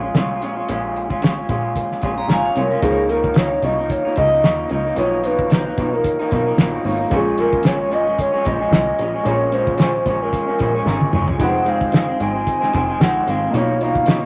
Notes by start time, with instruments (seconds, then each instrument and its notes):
Already playing: analog synth bass A#1
0.02 clean electric guitar G#3 C#4 F4
0.14 analog synth bass C2, clean electric guitar A#2 G#3 C#4 F4, snare, closed hi-hat
0.41 analog synth bass A#1, clean electric guitar A#2 G#3 C#4 F4, closed hi-hat
0.57 clean electric guitar G#3 C#4 F4
0.68 analog synth bass A#1, clean electric guitar A#2 G#3 C#4 F4, closed hi-hat
0.96 closed hi-hat
1.10 clean electric guitar G#3 C#4 F4, kick
1.22 clean electric guitar A#2 G#3 C#4 F4, snare, closed hi-hat
1.36 clean electric guitar G#3 C#4 F4
1.48 analog synth bass A#1, clean electric guitar A#2 G#3 C#4 F4, kick, closed hi-hat
1.76 kick, closed hi-hat
1.91 snare
2.01 analog synth bass A#1, clean electric guitar A#2 G#3 C#4 F4, kick, closed hi-hat
2.16 clean electric guitar G#3 C#4 F4, vibraphone A#5
2.28 analog synth bass G#1, clean electric guitar A#2 G#3 C#4 F4, vibraphone F5 G#5, snare, closed hi-hat
2.45 vibraphone C#5 F5
2.54 analog synth bass C2, clean electric guitar A#2 G#3 C#4 F4, vibraphone A#4 C#5, closed hi-hat
2.70 clean electric guitar G#3 C#4 F4, vibraphone A#4
2.79 analog synth bass C#2, clean electric guitar C#3 F3 A#3, synth keys A#3 D#4 F4, soft synth lead G#4, kick, closed hi-hat
2.83 clean electric guitar D#4, synth keys C5
2.90 synth keys C#5
3.08 clean electric guitar C#3 F3 A#3 D#4, soft synth lead A#4, closed hi-hat
3.24 kick
3.34 clean electric guitar C#3 F3 A#3 D#4, soft synth lead C#5, snare, closed hi-hat
3.51 clean electric guitar F3 A#3 D#4
3.62 analog synth bass C2, clean electric guitar C#3 F3 A#3 D#4, soft synth lead D#5, closed hi-hat
3.78 clean electric guitar F3 A#3 D#4
3.90 soft synth lead C#5, kick, closed hi-hat
4.05 clean electric guitar F3 A#3 D#4
4.16 analog synth bass C#2, clean electric guitar C#3 F3 A#3 D#4, soft synth lead D#5, kick, closed hi-hat
4.32 clean electric guitar F3 A#3 D#4
4.43 analog synth bass D#2, clean electric guitar C#3 F3 A#3 D#4, snare, closed hi-hat
4.69 analog synth bass C#2, clean electric guitar C#3 F3 A#3 D#4, soft synth lead D#5, closed hi-hat
4.85 clean electric guitar F3 A#3 D#4
4.95 analog synth bass B1, clean electric guitar B2 F3 A#3, synth keys B3 D#4 F4, soft synth lead C#5, closed hi-hat
4.99 clean electric guitar D#4, synth keys C#5
5.24 clean electric guitar B2 F3 A#3 D#4, soft synth lead B4, closed hi-hat
5.39 kick
5.50 clean electric guitar B2 F3 A#3 D#4, soft synth lead B4, snare, closed hi-hat
5.65 clean electric guitar F3 A#3 D#4
5.77 analog synth bass B1, clean electric guitar B2 F3 A#3 D#4, kick, closed hi-hat
5.92 clean electric guitar F3 A#3 D#4, soft synth lead A#4
6.04 kick, closed hi-hat
6.19 clean electric guitar F3 A#3 D#4
6.31 analog synth bass B1, clean electric guitar B2 F3 A#3 D#4, kick, closed hi-hat
6.46 clean electric guitar F3 A#3 D#4
6.57 analog synth bass A#1, clean electric guitar B2 F3 A#3 D#4, snare, closed hi-hat
6.84 analog synth bass G#1, clean electric guitar B2 F3 A#3 D#4, synth keys A#3 D#4 F4 C#5, open hi-hat
6.99 clean electric guitar F3 A#3 D#4
7.08 analog synth bass A#1, clean electric guitar A#2, synth keys G#3 C#4 F4, kick, closed hi-hat
7.12 clean electric guitar F3 G#3 C#4, soft synth lead G#4, synth keys A#4
7.38 clean electric guitar A#2 F3 G#3 C#4, soft synth lead A#4, closed hi-hat
7.53 kick
7.63 clean electric guitar A#2 F3 G#3 C#4, soft synth lead C#5, snare, closed hi-hat
7.79 clean electric guitar F3 G#3 C#4
7.90 analog synth bass G#1, clean electric guitar A#2 F3 G#3 C#4, soft synth lead D#5, closed hi-hat
8.05 clean electric guitar F3 G#3 C#4
8.19 soft synth lead C#5, kick, closed hi-hat
8.32 clean electric guitar F3 G#3 C#4
8.44 analog synth bass A#1, clean electric guitar A#2 F3 G#3 C#4, soft synth lead D#5, kick, closed hi-hat
8.60 clean electric guitar F3 G#3 C#4
8.71 analog synth bass C2, clean electric guitar A#2 F3 G#3 C#4, snare, closed hi-hat
8.98 analog synth bass A#1, clean electric guitar A#2 F3 G#3 C#4, closed hi-hat
9.14 clean electric guitar F3 G#3 C#4
9.23 analog synth bass A#1, clean electric guitar A#2 F3 G#3 C#4, synth keys G#3 C#4 F4, soft synth lead C#5, closed hi-hat
9.28 synth keys A#4
9.51 clean electric guitar A#2 F3 G#3 C#4, soft synth lead C5, closed hi-hat
9.67 kick
9.75 clean electric guitar A#2 F3 G#3, soft synth lead C#5, closed hi-hat
9.80 clean electric guitar C#4, soft synth lead C5, snare
9.93 clean electric guitar F3 G#3 C#4
10.05 analog synth bass A#1, clean electric guitar A#2 F3 G#3 C#4, kick, closed hi-hat
10.21 clean electric guitar F3 G#3 C#4, soft synth lead A#4
10.33 kick, closed hi-hat
10.47 clean electric guitar F3 G#3 C#4
10.59 analog synth bass A#1, clean electric guitar A#2 F3 G#3 C#4, kick, closed hi-hat
10.74 clean electric guitar F3 G#3 C#4
10.85 analog synth bass G#1, clean electric guitar A#2 F3 G#3 C#4, synth keys G#3 C#4 F4 A#4, snare
11.01 high tom
11.12 analog synth bass F#1, clean electric guitar A#2 F3 G#3 C#4, mid tom
11.28 clean electric guitar F3 G#3 C#4, floor tom
11.37 analog synth bass F1, clean electric guitar F2 D#3 G#3 C4, synth keys G#3 D#4 F4, kick, closed hi-hat
11.42 synth keys B4, soft synth lead F#5
11.49 synth keys C5
11.65 clean electric guitar F2 D#3 G#3 C4, soft synth lead F5, closed hi-hat
11.81 kick
11.92 clean electric guitar F2 D#3 G#3 C4, snare, closed hi-hat
12.07 clean electric guitar D#3 G#3 C4
12.19 analog synth bass G#1, clean electric guitar F2 D#3 G#3 C4, soft synth lead G#5, closed hi-hat
12.34 clean electric guitar D#3 G#3 C4
12.47 kick, closed hi-hat
12.60 clean electric guitar D#3 G#3 C4, snare
12.72 analog synth bass F1, clean electric guitar F2 D#3 G#3 C4, kick, closed hi-hat
12.88 clean electric guitar D#3 G#3 C4
13.00 analog synth bass A#1, clean electric guitar F2 D#3 G#3 C4, soft synth lead F#5, snare, closed hi-hat
13.27 analog synth bass G#1, clean electric guitar F2 D#3 G#3 C4, soft synth lead F5, closed hi-hat
13.50 analog synth bass B1, synth keys A#3 D#4 F4
13.54 clean electric guitar B2 F3 A#3 D#4, synth keys C#5, soft synth lead C#5, closed hi-hat
13.80 clean electric guitar B2 F3 A#3 D#4, soft synth lead F5, closed hi-hat
13.95 kick
14.06 clean electric guitar B2 F3 A#3 D#4, soft synth lead D#5, snare, closed hi-hat
14.22 clean electric guitar D#4